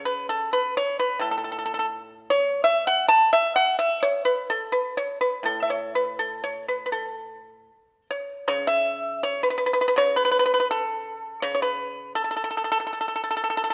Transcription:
Already playing: C#3
0.05 B4
0.29 A4
0.53 B4
0.77 C#5
0.99 B4
1.19 A2 A4
1.31 A4
1.38 A4
1.44 A4
1.52 A4
1.59 A4
1.66 A4
1.74 A4
1.79 A4
2.30 C#5
2.64 E5
2.87 F#5
3.08 A5
3.33 E5
3.56 F#5
3.79 E5
4.03 C#5
4.25 B4
4.50 A4
4.72 B4
4.97 C#5
5.21 B4
5.43 A2 A4
5.63 E5
5.70 C#5
5.95 B4
6.19 A4
6.44 C#5
6.68 B4
6.86 B4
6.92 A4
8.11 C#5
8.48 C#3 C#5
8.67 E5
9.23 C#5
9.43 B4
9.50 B4
9.58 B4
9.66 B4
9.73 B4
9.81 B4
9.88 B4
9.96 C#3 C#5
10.16 B4
10.25 B4
10.31 B4
10.39 B4
10.46 B4
10.54 B4
10.60 B4
10.71 A4
11.42 C#3 C#5
11.55 C#5
11.62 B4
12.15 A4
12.24 A4
12.31 A4
12.37 A4
12.44 A4
12.51 A4
12.57 A4
12.64 A4
12.72 A4
12.80 A4
12.87 A4
12.93 A4
13.01 A4
13.08 A4
13.16 A4
13.24 A4
13.31 A4
13.37 A4
13.44 A4
13.50 A4
13.57 A4
13.64 A4
13.70 A4

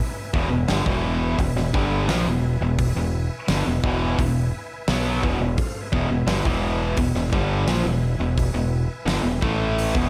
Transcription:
Already playing: B4 E5 G#5
0.34 E1 E2 B2, kick
0.50 E1 E2 B2
0.68 G1 G2 D3, snare, open hi-hat
0.85 E1 E2 B2 E3, kick
1.38 E1 E2 B2, kick, open hi-hat
1.56 E1 E2 B2, snare
1.74 G1 G2 D3 G3, kick
2.08 A#1 A#2 F3, snare, open hi-hat
2.25 E1 E2 B2
2.61 E1 E2 B2
2.78 B4 E5 G#5, kick, open hi-hat
2.96 E1 E2 B2
3.48 G1 G2 D3, snare, open hi-hat
3.67 E1 E2 B2
3.84 E1 E2 B2 E3, kick
4.18 E1 E2 B2, kick, open hi-hat
4.88 B1 B2 F#3 B3, snare, open hi-hat
5.22 E1 E2 B2, kick
5.41 E1 E2 B2
5.56 A4 C5 F5, kick, open hi-hat
5.81 B4 E5 G#5
5.92 E1 E2 B2, kick
6.10 E1 E2 B2
6.26 G1 G2 D3, snare, open hi-hat
6.45 E1 E2 B2 E3, kick
6.97 E1 E2 B2, kick, open hi-hat
7.15 E1 E2 B2, snare
7.32 G1 G2 D3 G3, kick
7.67 A#1 A#2 F3, snare, open hi-hat
7.84 E1 E2 B2
8.20 E1 E2 B2
8.34 B4 E5 G#5, kick
8.38 open hi-hat
8.54 E1 E2 B2
9.06 G1 G2 D3, snare, open hi-hat
9.23 E1 E2 B2
9.41 A1 A2 E3 A3, kick
9.79 open hi-hat
9.94 E1 E2 B2, kick

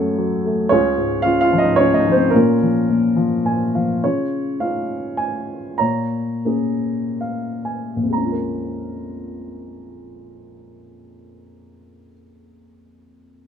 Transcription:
Already playing: F#2 C#3 F#3 A3 C#4 G#4 A4 C#5
0.18 F#3
0.45 A3
0.69 C#2 C#4 F4 G#4 C#5
0.98 G#2
1.22 C#3 F4 F5
1.41 F4 F5
1.52 F3
1.58 D#5
1.63 D#4
1.76 C#3 C#5
1.81 C#4
1.94 D#5
1.99 D#4
2.07 F3
2.12 C5
2.17 C4
2.30 A#2 A#4
2.35 A#3 C#4 F4
2.62 F3
2.89 A#2
3.16 F3
3.45 A#2 G#5
3.75 F3 F5
4.04 C#3 F4 C#5
4.60 C#4 D#4 F4 F5
5.17 G#5
5.78 A#2 C#5 A#5
6.45 A#3 C#4 G#4
7.21 F5
7.65 G#5
7.96 A#1
8.03 F2
8.10 G#3 A#5
8.18 C#4
8.25 F4
8.32 A#4

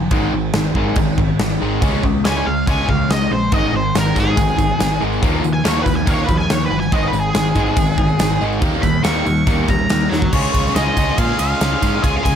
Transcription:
Already playing: F3
0.11 G#1 G#2 D#3 G#3, kick, crash
0.33 G#1 G#2 D#3
0.53 G#1 G#2 D#3, snare, crash
0.75 G#1 G#2 D#3 G#3, kick
0.96 G#1 G#2 D#3, kick, crash
1.18 G#2 D#3, kick
1.39 G#1 G#2 D#3, snare, crash
1.61 G#1 G#2 D#3 G#3
1.82 C#2 C#3 G#3 C#4, kick, crash
2.03 C#2 C#3 G#3, kick
2.25 C#2 C#3 G#3 C#4 G#5, snare, crash
2.47 C#2 C#3 G#3 F5
2.67 C#2 C#3 G#3 C#4 G#5, kick, crash
2.88 C#2 C#3 G#3 F5, kick
3.09 C#2 C#3 G#3 D#5, snare, crash
3.31 A#1 C#3 G#3 C5
3.52 G#1 G#2 D#3 G#3 D#5, kick, crash
3.73 G#1 G#2 D#3 C5
3.95 G#1 G#2 D#3 A#4, snare, tambourine, crash
4.15 G#1 G#2 D#3 G#3, kick, tambourine
4.20 G#4
4.37 G#1 G#2 D#3, kick, tambourine, crash
4.48 tambourine
4.57 G#2 D#3, kick, tambourine
4.69 tambourine
4.79 G#1 G#2 D#3, snare, tambourine, crash
5.00 G#1 G#2 D#3 G#3, tambourine
5.13 tambourine
5.22 D#2 D#3 F3 A#3, kick, crash
5.42 D#2 D#3 F3, tambourine
5.53 G#5
5.64 D#2 D#3 F3 A#3 C#5, snare, tambourine, crash
5.82 D#3 F3 B4
5.86 D#2, kick, tambourine
5.96 G#5
6.06 D#2 D#3 F3 A#3 C#5, kick, tambourine, crash
6.18 tambourine
6.24 D#3 B4
6.28 D#2 F3, kick, tambourine
6.37 G#5, tambourine
6.50 D#2 D#3 F3 C#5, snare, tambourine, crash
6.65 B4
6.71 G1 D#3 F3, tambourine
6.80 G#5, tambourine
6.92 G#1 G#2 D#3 G#3 D#5, kick, crash
7.07 B4
7.13 G#1 G#2 D#3, tambourine
7.20 G#4
7.34 G#1 G#2 D#3, snare, tambourine, crash
7.55 G#1 G#2 D#3 G#3, kick, tambourine
7.67 tambourine
7.76 G#1 G#2 D#3, kick, tambourine, crash
7.87 tambourine
7.98 G#2 D#3, kick
8.09 tambourine
8.19 G#1 G#2 D#3, snare, tambourine, crash
8.41 G#1 G#2 D#3 G#3, tambourine
8.53 tambourine
8.61 D#2 D#3 G3 A#3, kick, tambourine, crash
8.73 tambourine
8.82 D#2 D#3 G3 B5, kick, tambourine
8.94 tambourine
9.04 D#2 D#3 G3 A#3 C#6, snare, tambourine, crash
9.15 tambourine
9.26 D#2 D#3 G3, tambourine
9.37 tambourine
9.47 D#2 D#3 G3 A#3, kick, tambourine, crash
9.58 tambourine
9.68 D#2 D#3 G3 A#5, kick, tambourine
9.79 tambourine
9.89 D#2 D#3 G3, snare, tambourine, crash
10.01 tambourine
10.10 D#2 D#3 G3 C#5, snare, tambourine
10.22 kick, tambourine
10.33 C#2 C#3 G#3 C#4 F4 G#4, kick, crash, tambourine
10.54 C#2, kick, ride
10.66 snare
10.75 C#2 C#3 G#3 C#4 F4 G#4 D#5, snare, ride, tambourine
10.97 C#2 C#3 G#3 C#4 F4 G#4, kick, ride, tambourine
11.18 A#2 C#3 G#3 C#4 F4 G#4 F5, kick, ride
11.39 C#2 F5, ride, tambourine
11.61 C#2 C#3 G#3 C#4 F4 G#4, snare, ride, tambourine
11.82 G#2 C#3 G#3 C#4 F4 G#4, kick, ride, tambourine
12.03 C#2 C#3 G#3 C#4 F4 G#4 G#5, kick, ride, tambourine
12.17 F5
12.24 C#2 G#5, kick, ride

